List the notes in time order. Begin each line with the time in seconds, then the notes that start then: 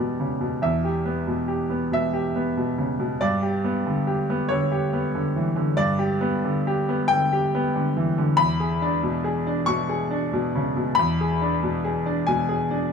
Already playing: E2 B3 G4 D5
0.00 B2
0.20 C#3
0.41 B2
0.62 E2 E5
0.85 G4
1.06 B3
1.27 B2
1.48 G4
1.70 B3
1.92 B2 E5
2.14 G4
2.36 B3
2.57 B2
2.78 C#3
3.00 B2
3.21 G2 D5
3.43 G4
3.64 B3
3.86 D3
4.07 G4
4.30 B3
4.49 D3 C#5
4.72 G4
4.93 B3
5.15 D3
5.36 E3
5.56 D3
5.77 G2 D5
5.99 G4
6.21 B3
6.44 D3
6.67 G4
6.89 B3
7.08 D3 G5
7.33 G4
7.55 B3
7.76 D3
7.97 E3
8.18 D3
8.37 E2 B5
8.60 G#4
8.82 D4
9.03 B2
9.24 G#4
9.47 D4
9.66 B2 C#6
9.89 G#4
10.11 D4
10.33 B2
10.55 C#3
10.77 B2
10.95 B5
10.99 E2
11.21 G#4
11.41 D4
11.63 B2
11.85 G#4
12.06 D4
12.27 B2 G#5
12.49 G#4
12.71 D4